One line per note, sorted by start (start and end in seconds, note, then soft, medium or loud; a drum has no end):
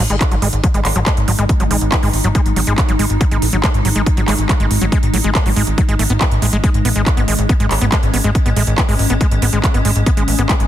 0.00 10.67 G#3 medium
0.00 6.66 D#4 medium
0.10 0.17 G#1 loud
0.10 0.16 G#3 medium
0.10 closed hi-hat medium
0.21 kick loud
0.21 clap loud
0.21 closed hi-hat loud
0.31 0.39 G#1 medium
0.31 0.36 F#3 medium
0.31 closed hi-hat medium
0.42 0.49 G#1 medium
0.42 0.48 G#3 medium
0.42 open hi-hat loud
0.53 0.60 G#1 loud
0.53 closed hi-hat medium
0.64 0.68 F#3 medium
0.64 kick loud
0.64 closed hi-hat loud
0.74 0.82 G#1 medium
0.74 0.80 G#3 medium
0.74 closed hi-hat medium
0.85 0.92 G#1 loud
0.85 clap medium
0.85 open hi-hat loud
0.96 1.03 G#1 medium
0.96 1.00 F#3 medium
0.96 closed hi-hat medium
1.06 1.13 G#3 medium
1.06 kick loud
1.06 clap loud
1.06 closed hi-hat loud
1.17 1.24 G#1 medium
1.17 closed hi-hat medium
1.28 1.35 G#1 loud
1.28 1.32 F#3 medium
1.28 open hi-hat loud
1.39 1.46 G#1 medium
1.39 1.45 G#3 medium
1.39 closed hi-hat medium
1.49 kick loud
1.49 closed hi-hat loud
1.60 1.67 G#1 medium
1.60 1.64 F#3 medium
1.60 closed hi-hat medium
1.71 1.78 A1 loud
1.71 1.77 G#3 medium
1.71 open hi-hat loud
1.81 1.89 G#1 loud
1.81 closed hi-hat soft
1.92 1.96 F#3 medium
1.92 kick loud
1.92 clap loud
1.92 closed hi-hat medium
2.03 2.10 G#1 medium
2.03 2.09 G#3 medium
2.03 open hi-hat medium
2.14 2.21 G#1 loud
2.14 open hi-hat loud
2.24 2.32 G#1 medium
2.24 2.28 F#3 medium
2.24 closed hi-hat medium
2.35 2.41 G#3 medium
2.35 kick loud
2.35 closed hi-hat loud
2.46 2.53 G#1 medium
2.46 closed hi-hat medium
2.56 2.64 G#1 loud
2.56 2.61 F#3 medium
2.56 open hi-hat loud
2.67 2.74 G#1 medium
2.67 2.73 G#3 medium
2.67 closed hi-hat medium
2.78 kick loud
2.78 clap loud
2.78 closed hi-hat medium
2.89 2.96 G#1 medium
2.89 2.93 F#3 medium
2.89 closed hi-hat medium
2.99 3.07 G#1 medium
2.99 3.05 G#3 medium
2.99 open hi-hat loud
3.10 3.17 G#1 medium
3.10 closed hi-hat medium
3.21 3.25 F#3 medium
3.21 kick loud
3.21 closed hi-hat medium
3.31 3.39 G#1 medium
3.31 3.38 G#3 medium
3.31 closed hi-hat medium
3.42 3.49 A1 loud
3.42 open hi-hat loud
3.53 3.60 G#1 loud
3.53 3.57 F#3 medium
3.53 closed hi-hat medium
3.64 3.70 G#3 medium
3.64 kick loud
3.64 clap loud
3.64 closed hi-hat medium
3.74 3.82 G#1 medium
3.74 closed hi-hat medium
3.85 3.92 G#1 loud
3.85 3.89 F#3 medium
3.85 open hi-hat loud
3.96 4.03 G#1 medium
3.96 4.02 G#3 medium
3.96 closed hi-hat medium
4.06 kick loud
4.06 closed hi-hat medium
4.17 4.24 G#1 medium
4.17 4.21 F#3 medium
4.17 closed hi-hat medium
4.28 4.35 G#1 loud
4.28 4.34 G#3 medium
4.28 clap medium
4.28 open hi-hat loud
4.39 4.46 G#1 medium
4.39 closed hi-hat medium
4.49 4.53 F#3 medium
4.49 kick loud
4.49 clap loud
4.49 closed hi-hat loud
4.60 4.67 G#1 medium
4.60 4.66 G#3 medium
4.60 closed hi-hat medium
4.71 4.78 G#1 loud
4.71 open hi-hat loud
4.81 4.89 G#1 medium
4.81 4.86 F#3 medium
4.81 closed hi-hat medium
4.92 4.98 G#3 medium
4.92 kick loud
4.92 closed hi-hat medium
5.03 5.10 G#1 medium
5.03 closed hi-hat medium
5.14 5.21 A1 loud
5.14 5.18 F#3 medium
5.14 open hi-hat loud
5.24 5.32 G#1 loud
5.24 5.30 G#3 medium
5.24 closed hi-hat soft
5.35 kick loud
5.35 clap loud
5.35 closed hi-hat medium
5.46 5.53 G#1 medium
5.46 5.50 F#3 medium
5.46 open hi-hat medium
5.56 5.64 G#1 loud
5.56 5.63 G#3 medium
5.56 open hi-hat loud
5.67 5.74 G#1 medium
5.67 closed hi-hat medium
5.78 5.82 F#3 medium
5.78 kick loud
5.78 closed hi-hat medium
5.89 5.96 G#1 medium
5.89 5.95 G#3 medium
5.89 closed hi-hat soft
5.99 6.07 G#1 loud
5.99 6.03 A3 medium
5.99 open hi-hat loud
6.10 6.17 G#1 medium
6.10 6.12 B3 loud
6.10 closed hi-hat medium
6.21 6.25 A3 medium
6.21 kick loud
6.21 clap loud
6.21 closed hi-hat medium
6.31 6.39 G#1 medium
6.31 closed hi-hat medium
6.42 6.49 A1 loud
6.42 6.46 G#3 loud
6.42 open hi-hat loud
6.53 6.60 G#1 medium
6.53 6.57 G#3 loud
6.53 closed hi-hat medium
6.64 6.70 G#3 medium
6.64 10.67 C#4 medium
6.64 kick loud
6.64 closed hi-hat medium
6.74 6.82 G#1 medium
6.74 closed hi-hat medium
6.85 6.92 A1 loud
6.85 6.89 B3 medium
6.85 open hi-hat loud
6.96 7.03 G#1 loud
6.96 7.02 G#3 medium
6.96 closed hi-hat soft
7.06 kick loud
7.06 clap loud
7.06 closed hi-hat medium
7.17 7.24 G#1 medium
7.17 7.21 B3 medium
7.17 closed hi-hat soft
7.28 7.35 G#1 loud
7.28 7.34 G#3 medium
7.28 open hi-hat loud
7.39 7.46 G#1 loud
7.39 closed hi-hat medium
7.49 7.53 B3 medium
7.49 kick loud
7.49 closed hi-hat medium
7.60 7.67 G#1 medium
7.60 7.66 G#3 medium
7.60 closed hi-hat medium
7.71 7.78 G#1 loud
7.71 clap medium
7.71 open hi-hat loud
7.81 7.89 G#1 medium
7.81 7.86 B3 medium
7.81 closed hi-hat soft
7.92 7.98 G#3 medium
7.92 kick loud
7.92 clap loud
7.92 closed hi-hat loud
8.03 8.10 G#1 medium
8.03 closed hi-hat soft
8.14 8.21 G#1 loud
8.14 8.18 B3 medium
8.14 open hi-hat loud
8.24 8.32 G#1 medium
8.24 8.30 G#3 medium
8.24 closed hi-hat soft
8.35 kick loud
8.35 closed hi-hat loud
8.46 8.53 G#1 medium
8.46 8.50 B3 medium
8.46 closed hi-hat soft
8.56 8.64 A1 loud
8.56 8.63 G#3 medium
8.56 open hi-hat loud
8.67 8.74 G#1 loud
8.67 closed hi-hat medium
8.78 8.82 B3 medium
8.78 kick loud
8.78 clap loud
8.78 closed hi-hat medium
8.89 8.96 G#1 medium
8.89 8.95 G#3 medium
8.89 open hi-hat medium
8.99 9.07 G#1 medium
8.99 open hi-hat loud
9.10 9.17 G#1 medium
9.10 9.14 B3 medium
9.10 closed hi-hat medium
9.21 9.27 G#3 medium
9.21 kick loud
9.21 closed hi-hat medium
9.31 9.39 G#1 medium
9.31 closed hi-hat medium
9.42 9.49 G#1 loud
9.42 9.46 B3 medium
9.42 open hi-hat loud
9.53 9.60 G#1 medium
9.53 9.59 G#3 medium
9.53 closed hi-hat medium
9.64 kick loud
9.64 clap loud
9.64 closed hi-hat loud
9.74 9.82 G#1 medium
9.74 9.78 B3 medium
9.74 closed hi-hat medium
9.85 9.92 G#1 medium
9.85 9.91 G#3 medium
9.85 open hi-hat loud
9.96 10.03 G#1 medium
9.96 closed hi-hat medium
10.06 10.11 B3 medium
10.06 kick loud
10.06 closed hi-hat loud
10.17 10.24 G#1 medium
10.17 10.23 G#3 medium
10.17 closed hi-hat medium
10.28 10.35 A1 medium
10.28 open hi-hat loud
10.39 10.46 G#1 loud
10.39 10.43 B3 medium
10.39 closed hi-hat medium
10.49 10.55 G#3 medium
10.49 kick loud
10.49 clap loud
10.49 closed hi-hat loud
10.60 10.67 G#1 medium
10.60 closed hi-hat medium